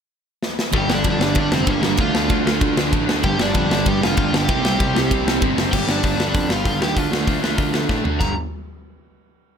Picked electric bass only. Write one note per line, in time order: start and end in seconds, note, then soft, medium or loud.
0.73 0.87 G1 loud
0.89 1.03 G1 loud
1.04 1.19 F2 medium
1.20 1.34 G1 medium
1.35 1.50 G2 medium
1.52 1.66 F1 loud
1.67 1.81 G1 loud
1.82 1.96 G1 medium
1.98 2.12 D2 medium
2.13 2.28 D2 loud
2.30 2.44 D2 medium
2.45 2.59 D2 medium
2.61 2.75 D2 medium
2.77 2.91 D2 medium
2.93 3.07 A1 loud
3.08 3.22 D2 medium
3.24 3.38 G1 loud
3.38 3.53 G1 medium
3.54 3.69 F2 medium
3.69 3.84 G1 medium
3.86 4.00 G2 loud
4.01 4.15 F1 loud
4.17 4.31 G1 loud
4.33 4.47 G1 medium
4.48 4.62 C2 loud
4.64 4.78 C2 loud
4.80 4.93 C2 loud
4.95 5.09 C2 medium
5.11 5.25 C2 medium
5.25 5.39 C2 medium
5.42 5.55 G1 loud
5.57 5.70 F#1 medium
5.73 5.86 G1 loud
5.88 6.01 G1 medium
6.03 6.17 G1 medium
6.18 6.32 G1 medium
6.34 6.48 F2 medium
6.49 6.63 G1 medium
6.65 6.79 G1 loud
6.79 6.93 D#2 medium
6.96 7.10 D2 loud
7.11 7.24 D2 medium
7.27 7.41 D2 medium
7.42 7.56 D2 medium
7.58 7.85 D2 medium
7.89 8.03 A2 medium
8.04 8.18 D2 medium
8.20 8.35 G1 loud